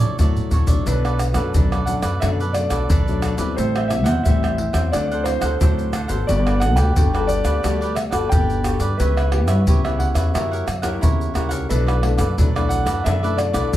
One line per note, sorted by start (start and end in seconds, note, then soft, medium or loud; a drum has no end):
0.00 0.15 A1 medium
0.00 0.15 D3 medium
0.00 0.14 F#3 medium
0.00 0.14 E4 medium
0.00 0.17 A4 medium
0.00 0.16 C#5 medium
0.00 0.16 D5 medium
0.00 0.48 D5 medium
0.18 0.33 A1 medium
0.18 0.83 A2 medium
0.18 0.64 F#3 medium
0.18 0.65 E4 medium
0.18 0.50 F#4 medium
0.18 0.51 A4 medium
0.18 0.52 D5 medium
0.18 pandeiro medium
0.18 shaker medium
0.18 surdo medium
0.36 0.50 D2 medium
0.36 surdo medium
0.36 pandeiro soft
0.36 shaker soft
0.51 0.66 C#2 medium
0.51 0.68 F#4 soft
0.51 0.68 A4 soft
0.51 0.67 C#5 medium
0.51 0.66 D5 medium
0.51 pandeiro medium
0.51 shaker medium
0.51 surdo loud
0.66 0.83 B1 medium
0.66 1.31 F#3 soft
0.66 1.31 A3 soft
0.66 1.31 D4 medium
0.66 0.85 A4 medium
0.66 0.84 C#5 medium
0.66 0.84 D5 medium
0.66 pandeiro medium
0.66 shaker medium
0.66 surdo medium
0.86 1.36 B1 loud
0.86 1.51 B2 soft
0.86 1.02 D4 soft
0.86 1.03 A4 soft
0.86 1.91 B4 medium
0.86 1.03 B4 soft
0.86 1.03 D5 medium
0.86 pandeiro medium
0.86 shaker medium
0.86 surdo medium
1.05 1.19 A4 soft
1.05 1.19 B4 medium
1.05 1.20 D5 medium
1.05 pandeiro soft
1.05 tamborim medium
1.05 shaker soft
1.19 muted cavaquinho stroke soft
1.19 pandeiro medium
1.19 tamborim medium
1.19 shaker medium
1.34 1.50 F#2 medium
1.34 1.81 F#3 medium
1.34 1.82 A3 medium
1.34 1.82 D4 medium
1.34 1.52 A4 medium
1.34 1.52 B4 medium
1.34 1.51 D5 medium
1.34 pandeiro medium
1.34 tamborim medium
1.34 shaker medium
1.54 1.97 B1 medium
1.54 2.19 F#2 medium
1.54 1.70 D4 medium
1.54 1.70 A4 soft
1.54 1.71 B4 medium
1.54 1.71 D5 medium
1.54 pandeiro medium
1.54 shaker medium
1.54 surdo medium
1.72 2.03 A4 medium
1.72 2.02 B4 medium
1.72 2.01 D5 medium
1.72 pandeiro soft
1.72 tamborim medium
1.72 shaker soft
1.72 surdo soft
1.86 2.08 F#3 medium
1.86 2.08 A3 soft
1.86 2.08 D4 medium
1.86 1.93 F#5 loud
1.86 pandeiro medium
1.86 shaker medium
2.02 2.18 F#2 medium
2.02 2.20 A4 medium
2.02 2.20 B4 medium
2.02 2.19 D5 medium
2.02 pandeiro medium
2.02 tamborim medium
2.02 shaker medium
2.02 surdo soft
2.20 2.66 F#2 medium
2.20 2.87 B2 medium
2.20 2.42 F#3 medium
2.20 2.43 A3 medium
2.20 2.37 D4 soft
2.20 2.43 D4 medium
2.20 2.38 A4 soft
2.20 2.38 B4 soft
2.20 2.38 D5 medium
2.20 2.28 E5 medium
2.20 pandeiro medium
2.20 tamborim medium
2.20 shaker medium
2.20 surdo medium
2.39 2.54 A4 medium
2.39 2.54 B4 medium
2.39 2.54 D5 medium
2.39 pandeiro soft
2.39 shaker soft
2.53 3.01 F#3 medium
2.53 3.01 A3 medium
2.53 3.02 D4 medium
2.53 3.18 D5 medium
2.53 muted cavaquinho stroke soft
2.53 pandeiro medium
2.53 tamborim medium
2.53 shaker medium
2.70 2.86 B1 medium
2.70 2.88 A4 medium
2.70 2.88 B4 medium
2.70 2.87 D5 medium
2.70 pandeiro medium
2.70 tamborim medium
2.70 shaker medium
2.70 surdo soft
2.89 3.33 B1 medium
2.89 3.55 F#2 medium
2.89 3.21 D4 medium
2.89 3.22 A4 medium
2.89 3.22 B4 medium
2.89 3.23 D5 medium
2.89 pandeiro medium
2.89 shaker medium
2.89 surdo loud
3.08 3.36 F#3 medium
3.08 3.36 A3 medium
3.08 3.36 D4 medium
3.08 pandeiro soft
3.08 shaker soft
3.22 3.39 D4 soft
3.22 3.39 A4 medium
3.22 3.38 B4 medium
3.22 3.36 D5 medium
3.22 pandeiro medium
3.22 tamborim medium
3.22 shaker medium
3.22 surdo soft
3.38 3.54 E2 medium
3.38 3.89 G3 medium
3.38 3.89 C4 medium
3.38 3.90 E4 medium
3.38 3.56 A4 medium
3.38 3.55 B4 medium
3.38 3.55 D5 medium
3.38 pandeiro medium
3.38 shaker medium
3.38 surdo soft
3.56 4.06 A1 loud
3.56 4.22 A2 medium
3.56 3.73 A4 soft
3.56 3.92 C5 medium
3.56 3.74 C5 soft
3.56 3.74 E5 soft
3.56 3.74 G5 soft
3.56 pandeiro medium
3.56 shaker medium
3.56 surdo medium
3.76 3.89 C5 soft
3.76 3.90 E5 medium
3.76 3.90 G5 medium
3.76 pandeiro soft
3.76 tamborim medium
3.76 shaker soft
3.88 4.19 G3 soft
3.88 4.20 C4 medium
3.88 4.20 E4 medium
3.88 4.07 E5 loud
3.88 muted cavaquinho stroke soft
3.88 pandeiro medium
3.88 tamborim medium
3.88 shaker medium
4.04 4.21 E2 medium
4.04 4.23 E5 medium
4.04 4.24 F#5 loud
4.04 4.23 G5 medium
4.04 pandeiro medium
4.04 tamborim medium
4.04 shaker medium
4.08 4.24 C5 medium
4.23 4.69 A1 medium
4.23 4.90 E3 medium
4.23 4.57 G3 medium
4.23 4.57 C4 medium
4.23 4.57 E4 medium
4.23 4.41 A4 soft
4.23 4.41 C5 medium
4.23 4.94 E5 medium
4.23 4.42 E5 medium
4.23 pandeiro medium
4.23 shaker medium
4.23 surdo medium
4.28 4.42 G5 medium
4.43 4.74 C5 medium
4.43 4.73 E5 medium
4.43 4.72 G5 medium
4.43 pandeiro soft
4.43 tamborim medium
4.43 shaker soft
4.43 surdo soft
4.58 pandeiro medium
4.73 4.89 E2 medium
4.73 5.20 F#3 medium
4.73 5.20 C4 medium
4.73 5.21 E4 medium
4.73 4.92 C5 medium
4.73 4.91 E5 medium
4.73 4.90 G5 medium
4.73 pandeiro medium
4.73 tamborim medium
4.73 shaker medium
4.73 surdo soft
4.92 5.37 D2 medium
4.92 5.58 D3 medium
4.92 5.09 D4 soft
4.92 5.09 A4 soft
4.92 5.09 C5 soft
4.92 5.27 D5 medium
4.92 5.10 F#5 medium
4.92 pandeiro medium
4.92 tamborim medium
4.92 shaker medium
4.92 surdo medium
5.11 5.26 A4 medium
5.11 5.26 C5 medium
5.11 5.26 F#5 medium
5.11 pandeiro soft
5.11 shaker soft
5.24 5.47 F#3 medium
5.24 5.47 C4 medium
5.24 5.47 E4 medium
5.24 5.89 C5 loud
5.24 muted cavaquinho stroke soft
5.24 pandeiro medium
5.24 tamborim medium
5.24 shaker medium
5.41 5.57 D2 medium
5.41 5.60 A4 medium
5.41 5.59 C5 medium
5.41 5.58 F#5 medium
5.41 pandeiro medium
5.41 tamborim medium
5.41 shaker medium
5.41 surdo soft
5.61 6.04 D2 medium
5.61 6.26 A2 medium
5.61 5.93 F#3 medium
5.61 5.93 C4 medium
5.61 5.92 D4 medium
5.61 5.93 E4 medium
5.61 5.93 A4 medium
5.61 5.93 C5 medium
5.61 5.94 F#5 medium
5.61 pandeiro medium
5.61 shaker medium
5.61 surdo loud
5.79 pandeiro soft
5.79 shaker soft
5.93 6.10 D4 medium
5.93 6.09 A4 medium
5.93 6.08 C5 medium
5.93 6.07 F#5 medium
5.93 pandeiro medium
5.93 tamborim medium
5.93 shaker medium
5.93 surdo soft
6.08 6.25 G#1 medium
6.08 6.56 B3 medium
6.08 6.56 F#4 medium
6.08 6.57 A4 medium
6.08 6.27 A4 medium
6.08 6.26 C5 medium
6.08 6.26 F#5 medium
6.08 pandeiro medium
6.08 shaker medium
6.08 surdo soft
6.27 6.77 G1 loud
6.27 6.93 G3 soft
6.27 6.44 F#4 soft
6.27 6.45 G4 medium
6.27 6.45 B4 medium
6.27 6.59 D5 medium
6.27 6.45 D5 soft
6.27 pandeiro medium
6.27 shaker medium
6.27 surdo medium
6.46 6.60 G4 soft
6.46 6.61 B4 medium
6.46 6.61 D5 medium
6.46 pandeiro soft
6.46 tamborim medium
6.46 shaker soft
6.60 6.90 B3 medium
6.60 6.91 F#4 medium
6.60 6.91 A4 medium
6.60 6.77 F#5 loud
6.60 muted cavaquinho stroke soft
6.60 pandeiro medium
6.60 tamborim medium
6.60 shaker medium
6.76 6.92 D2 medium
6.76 6.95 G4 medium
6.76 6.94 B4 medium
6.76 6.93 D5 medium
6.76 7.30 G5 loud
6.76 pandeiro medium
6.76 tamborim medium
6.76 shaker medium
6.96 7.40 G1 medium
6.96 7.61 D3 medium
6.96 7.07 B3 medium
6.96 7.12 F#4 medium
6.96 7.07 F#4 medium
6.96 7.12 G4 medium
6.96 7.07 A4 medium
6.96 7.12 B4 soft
6.96 7.12 D5 medium
6.96 pandeiro medium
6.96 shaker medium
6.96 surdo medium
7.13 7.60 B3 medium
7.13 7.60 F#4 medium
7.13 7.45 G4 medium
7.13 7.60 A4 medium
7.13 7.44 B4 medium
7.13 7.43 D5 medium
7.13 pandeiro soft
7.13 tamborim medium
7.13 shaker soft
7.13 surdo soft
7.27 7.93 D5 loud
7.27 pandeiro medium
7.27 shaker medium
7.44 7.60 D2 medium
7.44 7.62 G4 medium
7.44 7.62 B4 medium
7.44 7.61 D5 medium
7.44 pandeiro medium
7.44 tamborim medium
7.44 shaker medium
7.44 surdo soft
7.63 8.07 D2 medium
7.63 8.29 G3 medium
7.63 7.96 B3 medium
7.63 7.79 F#4 medium
7.63 7.97 F#4 medium
7.63 7.80 G4 soft
7.63 7.97 A4 medium
7.63 7.80 B4 soft
7.63 7.80 D5 medium
7.63 pandeiro medium
7.63 tamborim medium
7.63 shaker medium
7.63 surdo medium
7.81 7.96 G4 medium
7.81 7.96 B4 medium
7.81 7.96 D5 medium
7.81 pandeiro soft
7.81 shaker soft
7.95 8.00 E5 medium
7.95 muted cavaquinho stroke soft
7.95 pandeiro medium
7.95 tamborim medium
7.95 shaker medium
8.11 8.28 G1 medium
8.11 8.59 B3 medium
8.11 8.59 F#4 medium
8.11 8.30 G4 medium
8.11 8.60 A4 medium
8.11 8.29 B4 medium
8.11 8.29 D5 medium
8.11 8.16 F#5 medium
8.11 pandeiro medium
8.11 tamborim medium
8.11 shaker medium
8.11 surdo soft
8.29 8.75 G1 medium
8.29 8.97 D3 medium
8.29 8.63 G4 medium
8.29 8.64 B4 medium
8.29 8.78 G5 loud
8.29 pandeiro medium
8.29 shaker medium
8.29 surdo loud
8.33 8.65 D5 medium
8.50 pandeiro soft
8.50 shaker soft
8.64 8.87 B3 soft
8.64 8.81 F#4 soft
8.64 8.87 F#4 soft
8.64 8.81 G4 medium
8.64 8.87 A4 medium
8.64 8.80 B4 medium
8.64 8.79 D5 medium
8.64 pandeiro medium
8.64 tamborim medium
8.64 shaker medium
8.64 surdo soft
8.80 8.95 G2 medium
8.80 8.98 G4 soft
8.80 8.97 B4 medium
8.80 8.97 D5 medium
8.80 pandeiro medium
8.80 shaker medium
8.80 surdo soft
8.98 9.48 C#2 loud
8.98 9.64 C#3 medium
8.98 9.28 B3 medium
8.98 9.29 E4 medium
8.98 9.15 G4 soft
8.98 9.29 G4 medium
8.98 9.96 B4 medium
8.98 9.16 B4 soft
8.98 9.16 C#5 medium
8.98 9.15 E5 medium
8.98 pandeiro medium
8.98 shaker medium
8.98 surdo medium
9.17 9.31 B4 medium
9.17 9.31 C#5 medium
9.17 9.31 E5 medium
9.17 pandeiro soft
9.17 tamborim medium
9.17 shaker soft
9.31 9.62 B3 medium
9.31 9.62 E4 medium
9.31 9.62 G4 medium
9.31 muted cavaquinho stroke soft
9.31 pandeiro medium
9.31 tamborim medium
9.47 9.63 G2 medium
9.47 9.66 B4 soft
9.47 9.65 C#5 medium
9.47 9.65 E5 medium
9.47 pandeiro medium
9.47 tamborim medium
9.47 shaker medium
9.67 10.10 C#2 medium
9.67 10.32 C#3 medium
9.67 9.79 B3 medium
9.67 9.79 E4 medium
9.67 9.83 G4 soft
9.67 9.80 G4 medium
9.67 9.83 B4 soft
9.67 9.84 C#5 medium
9.67 9.83 E5 medium
9.67 pandeiro medium
9.67 shaker medium
9.67 surdo medium
9.84 10.30 B3 medium
9.84 10.31 E4 medium
9.84 10.31 G4 medium
9.84 10.15 B4 medium
9.84 10.14 C#5 medium
9.84 10.13 E5 medium
9.84 pandeiro soft
9.84 tamborim medium
9.84 shaker soft
9.84 surdo soft
9.99 10.07 F#5 medium
9.99 pandeiro medium
10.14 10.31 E2 medium
10.14 10.33 B4 medium
10.14 10.32 C#5 medium
10.14 10.32 E5 medium
10.14 pandeiro medium
10.14 tamborim medium
10.14 shaker medium
10.14 surdo soft
10.34 10.64 F#2 medium
10.34 11.00 F#3 medium
10.34 10.67 A#3 medium
10.34 10.50 E4 medium
10.34 10.67 E4 medium
10.34 10.67 G4 medium
10.34 10.51 A#4 medium
10.34 10.51 C#5 soft
10.34 11.32 E5 medium
10.34 10.50 F#5 soft
10.34 pandeiro medium
10.34 tamborim medium
10.34 shaker medium
10.34 surdo medium
10.51 10.66 A#4 medium
10.51 10.66 C#5 medium
10.51 10.67 F#5 medium
10.51 pandeiro soft
10.51 shaker soft
10.67 10.98 F#2 medium
10.67 muted cavaquinho stroke soft
10.67 pandeiro medium
10.67 tamborim medium
10.67 shaker medium
10.82 11.30 A#3 medium
10.82 11.30 E4 medium
10.82 11.30 G4 medium
10.82 11.01 A#4 medium
10.82 11.00 C#5 medium
10.82 11.00 F#5 medium
10.82 pandeiro medium
10.82 tamborim medium
10.82 shaker medium
10.82 surdo soft
11.01 11.33 E2 medium
11.01 11.67 C#3 medium
11.01 11.32 E4 medium
11.01 11.34 A#4 medium
11.01 11.34 C#5 medium
11.01 11.35 F#5 medium
11.01 pandeiro medium
11.01 shaker medium
11.01 surdo loud
11.21 pandeiro soft
11.21 shaker soft
11.34 11.66 C#2 medium
11.34 11.67 A#3 soft
11.34 11.51 E4 soft
11.34 11.67 E4 soft
11.34 11.68 G4 medium
11.34 11.50 A#4 medium
11.34 11.49 C#5 soft
11.34 11.48 F#5 medium
11.34 pandeiro medium
11.34 tamborim medium
11.34 shaker medium
11.34 surdo soft
11.49 11.68 A#4 medium
11.49 11.67 C#5 medium
11.49 11.67 F#5 medium
11.49 pandeiro medium
11.49 shaker medium
11.49 surdo soft
11.69 12.20 B1 loud
11.69 12.35 B2 medium
11.69 11.99 A3 medium
11.69 11.85 D4 soft
11.69 11.99 D4 medium
11.69 11.99 E4 medium
11.69 11.86 A4 medium
11.69 12.74 B4 medium
11.69 11.86 B4 medium
11.69 11.85 D5 medium
11.69 pandeiro medium
11.69 shaker medium
11.69 surdo medium
11.87 12.01 A4 medium
11.87 12.02 B4 medium
11.87 12.02 D5 medium
11.87 pandeiro soft
11.87 tamborim medium
11.87 shaker soft
12.02 12.24 A3 medium
12.02 12.24 D4 medium
12.02 12.24 E4 medium
12.02 muted cavaquinho stroke soft
12.02 pandeiro medium
12.02 tamborim medium
12.17 12.34 F#2 medium
12.17 12.36 A4 medium
12.17 12.36 B4 medium
12.17 12.35 D5 medium
12.17 pandeiro medium
12.17 tamborim medium
12.17 shaker medium
12.38 12.81 B1 loud
12.38 13.02 F#3 medium
12.38 12.48 A3 medium
12.38 12.53 D4 soft
12.38 12.49 D4 medium
12.38 12.49 E4 medium
12.38 12.54 A4 medium
12.38 12.54 B4 medium
12.38 12.54 D5 medium
12.38 pandeiro medium
12.38 shaker medium
12.38 surdo medium
12.56 13.01 A3 medium
12.56 13.01 D4 medium
12.56 13.01 E4 medium
12.56 12.86 A4 medium
12.56 12.85 B4 medium
12.56 12.84 D5 medium
12.56 pandeiro soft
12.56 tamborim medium
12.56 shaker soft
12.56 surdo soft
12.69 13.05 F#5 loud
12.69 pandeiro medium
12.69 shaker medium
12.85 13.01 F#2 medium
12.85 13.04 A4 medium
12.85 13.03 B4 medium
12.85 13.02 D5 medium
12.85 pandeiro medium
12.85 tamborim medium
12.85 shaker medium
12.85 surdo soft
13.04 13.49 F#2 medium
13.04 13.70 B2 medium
13.04 13.16 A3 soft
13.04 13.21 D4 medium
13.04 13.16 D4 medium
13.04 13.16 E4 medium
13.04 13.21 A4 soft
13.04 13.22 B4 medium
13.04 13.22 D5 medium
13.04 13.36 E5 medium
13.04 pandeiro medium
13.04 tamborim medium
13.04 shaker medium
13.04 surdo medium
13.23 13.51 A3 medium
13.23 13.52 D4 medium
13.23 13.52 E4 medium
13.23 13.37 A4 medium
13.23 13.38 B4 medium
13.23 13.38 D5 medium
13.23 pandeiro soft
13.23 shaker soft
13.37 13.77 D5 medium
13.37 muted cavaquinho stroke soft
13.37 pandeiro medium
13.37 tamborim medium
13.37 shaker medium
13.53 13.69 B1 medium
13.53 13.77 A3 medium
13.53 13.77 D4 medium
13.53 13.77 E4 medium
13.53 13.72 A4 medium
13.53 13.71 B4 medium
13.53 13.70 D5 medium
13.53 pandeiro medium
13.53 tamborim medium
13.53 shaker medium
13.53 surdo soft
13.73 13.77 B1 medium
13.73 13.77 F#3 medium
13.73 13.77 D4 medium
13.73 pandeiro medium
13.73 shaker medium
13.73 surdo loud